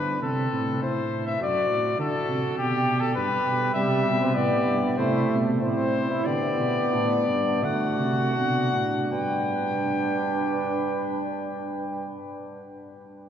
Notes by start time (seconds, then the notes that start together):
Already playing: D3 D4 B4
0.22 C3 C4 A4
0.52 A2
0.81 A2 E4 C5
1.26 E5
1.40 F#2 F#4 D5
1.70 A2
1.99 D3 F#4 A4
2.29 C3
2.58 B2 G4
3.00 A4
3.15 G2 G4 B4
3.46 B2
3.74 C3 G3 G4 E5
4.05 B2
4.21 C4
4.34 A2 B3 D5
4.66 G2
4.97 C3 A3 E4 C5
5.30 B2
5.59 A2 C4 E4 C5
6.11 E4
6.25 D3 B3 G4 D5
6.59 B2
6.93 A2 D4
7.28 G2
7.62 D3 A3 F#4 F#5
7.99 C3
8.35 B2 D4
8.72 A2
9.11 G2 D4 B4 G5